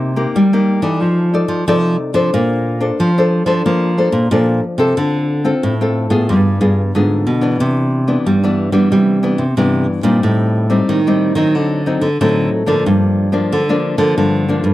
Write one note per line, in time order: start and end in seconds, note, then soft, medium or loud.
0.00 0.26 C3 medium
0.00 0.32 C3 medium
0.00 0.12 A#3 medium
0.00 0.13 D#4 medium
0.00 0.13 G4 medium
0.16 0.45 A#3 medium
0.16 0.45 D#4 medium
0.16 0.46 G4 medium
0.35 0.98 G3 medium
0.35 0.78 G3 medium
0.53 0.80 A#3 medium
0.53 0.80 D#4 medium
0.53 0.81 G4 medium
0.82 1.01 E3 medium
0.82 1.28 D#4 medium
0.82 1.28 A4 medium
0.82 1.28 D5 medium
1.01 1.44 F3 loud
1.01 1.65 F3 medium
1.34 1.62 D#4 medium
1.34 1.62 A4 soft
1.34 1.62 D5 medium
1.48 1.63 F3 medium
1.68 2.31 C3 medium
1.68 1.96 F3 loud
1.68 2.12 D#4 medium
1.68 2.12 A4 medium
1.68 2.12 D5 medium
2.14 2.29 F3 loud
2.14 2.77 D4 medium
2.14 2.77 A4 medium
2.14 2.77 C5 medium
2.34 2.90 A#2 loud
2.34 2.96 A#3 medium
2.81 3.10 D4 medium
2.81 3.10 A4 medium
2.81 3.10 C5 medium
3.00 3.62 F3 medium
3.00 3.42 F3 medium
3.18 3.45 D4 medium
3.18 3.45 A4 medium
3.18 3.45 C5 medium
3.46 3.61 F3 medium
3.46 3.92 D4 medium
3.46 3.92 A4 medium
3.46 3.92 C5 medium
3.66 4.08 F3 medium
3.66 4.28 A#3 medium
3.98 4.26 D4 medium
3.98 4.26 A4 medium
3.98 4.26 C5 medium
4.12 4.28 A#2 medium
4.31 4.59 A#2 loud
4.31 4.94 F3 medium
4.31 4.63 D4 medium
4.31 4.63 A4 medium
4.31 4.63 C5 medium
4.78 4.93 C3 medium
4.78 5.40 C4 medium
4.78 5.41 F4 medium
4.78 5.41 A4 medium
4.97 5.53 D3 loud
4.97 5.60 D3 medium
5.44 5.73 C4 medium
5.44 5.74 F4 medium
5.44 5.74 A4 medium
5.63 6.05 A2 loud
5.63 6.26 A2 medium
5.81 6.08 C4 medium
5.81 6.08 F4 medium
5.81 6.09 A4 medium
6.10 6.28 A2 medium
6.10 6.56 B3 medium
6.10 6.56 F4 medium
6.10 6.56 G#4 medium
6.29 6.57 G2 medium
6.29 6.92 G3 medium
6.61 6.91 G2 medium
6.61 6.81 B3 medium
6.61 6.81 F4 medium
6.61 6.81 G#4 medium
6.95 7.25 G#2 medium
6.95 7.58 D3 medium
6.95 7.26 B3 medium
6.95 7.26 F4 medium
6.95 7.26 G#4 medium
7.27 7.57 B2 medium
7.41 8.03 E3 medium
7.41 8.04 B3 medium
7.41 8.04 D4 medium
7.60 8.16 C3 loud
7.60 8.23 C3 medium
8.07 8.37 E3 medium
8.07 8.37 B3 medium
8.07 8.37 D4 medium
8.26 8.89 G2 medium
8.26 8.68 G3 medium
8.44 8.71 E3 medium
8.44 8.71 B3 medium
8.44 8.71 D4 medium
8.72 9.18 E3 medium
8.72 8.88 G3 medium
8.72 9.18 B3 medium
8.72 9.19 D4 medium
8.92 9.54 C3 medium
8.92 9.34 G3 loud
9.23 9.43 E3 medium
9.23 9.44 B3 medium
9.23 9.44 D4 medium
9.38 9.54 C3 medium
9.57 10.20 G2 medium
9.57 9.85 C3 loud
9.57 10.02 E3 medium
9.57 10.02 B3 medium
9.57 10.02 D4 medium
10.03 10.19 A#2 loud
10.03 10.66 G3 medium
10.03 10.66 C4 medium
10.03 10.67 D#4 medium
10.23 10.79 A2 loud
10.23 10.86 A2 medium
10.70 10.99 G3 medium
10.70 10.99 C4 medium
10.70 10.99 D#4 medium
10.89 11.52 A2 medium
10.89 11.31 D#3 loud
11.07 11.34 G3 medium
11.07 11.34 C4 medium
11.07 11.34 D#4 medium
11.35 11.55 D#3 medium
11.35 11.82 F#3 medium
11.35 11.82 C4 medium
11.35 11.82 D#4 medium
11.55 11.97 D3 loud
11.55 12.18 D3 medium
11.86 12.06 F#3 medium
11.86 12.07 C4 soft
11.86 12.07 D#4 medium
12.01 12.17 D3 medium
12.21 12.83 A2 medium
12.21 12.49 D3 loud
12.21 12.65 F#3 medium
12.21 12.65 C4 medium
12.21 12.65 D#4 medium
12.66 12.83 D3 medium
12.66 13.29 F3 medium
12.66 13.29 A#3 medium
12.66 13.29 D4 medium
12.86 13.49 G2 medium
12.86 13.42 G2 medium
13.32 13.61 F3 medium
13.32 13.62 A#3 medium
13.32 13.62 D4 medium
13.52 14.14 D3 medium
13.52 13.94 D3 loud
13.69 13.96 F3 medium
13.69 13.97 A#3 medium
13.69 13.97 D4 medium
13.98 14.13 D3 loud
13.98 14.44 F3 medium
13.98 14.44 A#3 medium
13.98 14.44 D4 medium
14.18 14.74 G2 medium
14.18 14.59 D3 medium
14.49 14.74 F3 medium
14.49 14.74 A#3 medium
14.49 14.74 D4 medium
14.64 14.74 G2 medium